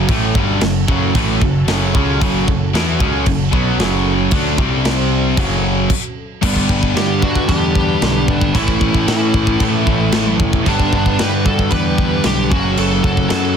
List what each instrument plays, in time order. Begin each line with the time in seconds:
Already playing: analog synth pad F#3 C#4 F#4 A4
0.08 picked electric bass A1, distorted electric guitar A2 E3 A3, kick, crash
0.35 picked electric bass G1, distorted electric guitar G2 D3 G3, kick
0.61 picked electric bass F#1, distorted electric guitar F#2 C#3, snare, crash
0.88 picked electric bass F#1, distorted electric guitar F#2 C#3 F#3, kick
1.15 picked electric bass A1, distorted electric guitar A2 E3 A3, kick, crash
1.41 picked electric bass F#1, distorted electric guitar F#2 C#3, kick
1.68 picked electric bass F#1, distorted electric guitar F#2 C#3 F#3, snare, crash
1.95 picked electric bass C#2, distorted electric guitar C#3 G#3 C#4, kick
2.21 picked electric bass F#1, distorted electric guitar F#2 C#3 F#3, kick, crash
2.48 picked electric bass F#1, distorted electric guitar F#2 C#3, kick
2.74 picked electric bass E2, distorted electric guitar E3 B3 E4, snare, crash
3.00 picked electric bass C#2, distorted electric guitar C#3 G#3 C#4, kick
3.26 picked electric bass F#1, distorted electric guitar F#2 C#3, kick, crash
3.53 picked electric bass B1, distorted electric guitar B2 F#3 B3, kick
3.78 picked electric bass F#1, distorted electric guitar F#2 C#3 F#3, snare, crash
4.31 picked electric bass D2, distorted electric guitar D3 A3 D4, kick, crash
4.57 picked electric bass C2, analog synth pad C3 G3 D4 C5, distorted electric guitar C3 G3 C4, kick
4.85 snare, crash
5.37 picked electric bass F#1, distorted electric guitar F#2 C#3 F#3, analog synth pad F#3 C#4 F#4 A4, kick, crash
5.90 kick, crash
6.42 picked electric bass G1, distorted electric guitar G2 D3 G3 B3 D4, lead electric guitar G3 B3, analog synth pad G4 B4 D5 B5, kick, crash, china
6.56 kick
6.69 picked electric bass G1, kick
6.83 kick
6.95 picked electric bass G2, lead electric guitar D4 G4, snare, china
7.21 distorted electric guitar G2 D3 G3, lead electric guitar D4 F#4, kick
7.35 kick
7.49 picked electric bass E2, lead electric guitar D4 G4, kick, china
7.75 kick
8.02 picked electric bass B1, snare, china
8.28 picked electric bass G#1, lead electric guitar B3 D4, kick
8.41 kick
8.53 picked electric bass A1, distorted electric guitar A2 E3 A3 C#4 E4, lead electric guitar C#4 E4, analog synth pad A4 C#5 E5 C#6, kick, china
8.68 kick
8.81 picked electric bass A1, kick
8.94 kick
9.08 picked electric bass A2, lead electric guitar C#4 E4, snare, china
9.33 picked electric bass A1, distorted electric guitar A2 E3 A3, kick
9.47 kick
9.60 picked electric bass A1, lead electric guitar E3 A3, kick, china
9.86 picked electric bass A1, kick
10.12 picked electric bass A1, snare, china
10.39 picked electric bass E1, kick
10.53 kick
10.66 picked electric bass G1, distorted electric guitar G2 D3 G3 B3 D4, lead electric guitar D4, analog synth pad B4 D5 G5 D6, kick, china
10.70 lead electric guitar B3
10.80 kick
10.92 picked electric bass G1, lead electric guitar B3 D4, kick
11.06 kick
11.19 picked electric bass G2, lead electric guitar G4 B4, snare, china
11.45 distorted electric guitar G2 D3 G3, lead electric guitar F#4 A4, kick
11.59 kick
11.71 picked electric bass E2, lead electric guitar G4 B4, kick, china
11.98 kick
12.24 picked electric bass B1, lead electric guitar D4 G4, snare, china
12.51 picked electric bass F#1, distorted electric guitar F#2 C#3 F#3 A3 C#4, lead electric guitar C#4 F#4, analog synth pad A4 C#5 F#5 C#6, kick
12.77 picked electric bass F#1, lead electric guitar F#4 A4, china
13.03 picked electric bass F#1, lead electric guitar F#4 A4, kick
13.17 kick
13.30 distorted electric guitar F#2 C#3 F#3, picked electric bass F#2, lead electric guitar F#4 A4, snare, china